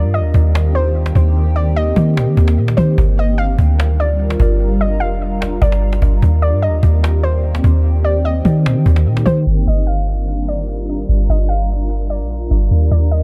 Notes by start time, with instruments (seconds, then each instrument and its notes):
Already playing: ambient pad D#3 A#3 C4 G4, synth pluck D5
0.04 808-style bass G2
0.14 synth pluck D#5, cajon slap
0.19 808-style bass D#2
0.34 808-style bass D#2, cajon bass
0.55 cajon slap
0.75 synth pluck C5, cajon slap
0.95 cajon slap
1.06 cajon slap
1.15 808-style bass D#2, cajon bass
1.36 cajon slap
1.56 synth pluck D5
1.76 synth pluck D#5, cajon slap
1.96 808-style bass D#3, cajon bass
2.10 cajon slap
2.17 808-style bass A#2, cajon slap
2.27 808-style bass D#3
2.37 808-style bass D#2, cajon bass
2.48 cajon slap
2.57 808-style bass A#2
2.68 cajon slap
2.77 808-style bass D#3, synth pluck C5, cajon bass
2.98 808-style bass G1, ambient pad G3 D4 F4 A#4, cajon bass
3.19 synth pluck D#5
3.38 synth pluck F5
3.59 808-style bass D2, cajon bass
3.80 cajon slap
4.00 synth pluck D5, cajon slap
4.20 cajon slap
4.30 cajon slap
4.40 808-style bass G1, cajon bass
4.60 cajon slap
4.81 synth pluck D#5
5.00 808-style bass F1, synth pluck F5, cajon slap
5.21 cajon slap
5.42 cajon slap
5.62 808-style bass G1, synth pluck D5, cajon bass
5.72 cajon slap
5.82 cajon slap
5.93 cajon slap
6.02 808-style bass G1, cajon bass
6.22 808-style bass D#2, ambient pad D#3 A#3 C4 G4, cajon bass
6.42 synth pluck D5
6.53 808-style bass G2
6.62 synth pluck D#5
6.68 808-style bass D#2
6.83 808-style bass D#2, cajon bass
7.04 cajon slap
7.23 synth pluck C5, cajon slap
7.44 cajon slap
7.55 cajon slap
7.64 808-style bass D#2, cajon bass
7.84 cajon slap
8.05 synth pluck D5
8.25 synth pluck D#5, cajon slap
8.45 808-style bass D#3, cajon bass
8.59 cajon slap
8.65 808-style bass A#2, cajon slap
8.76 808-style bass D#3
8.86 808-style bass D#2, cajon bass
8.96 cajon slap
9.06 808-style bass A#2, cajon slap
9.17 cajon slap
9.26 808-style bass D#3, synth pluck C5, cajon bass
9.47 808-style bass G1, ambient pad G3 D4 F4 A#4
9.67 808-style bass G1, synth pluck D#5
9.87 synth pluck F5
10.48 synth pluck D5
11.09 808-style bass G1
11.29 808-style bass G1, synth pluck D#5
11.49 synth pluck F5
12.10 synth pluck D5
12.20 808-style bass A#1
12.51 808-style bass G1
12.71 808-style bass D#2, ambient pad D#3 A#3 C4 G4
12.91 808-style bass D#2, synth pluck D5
13.11 synth pluck D#5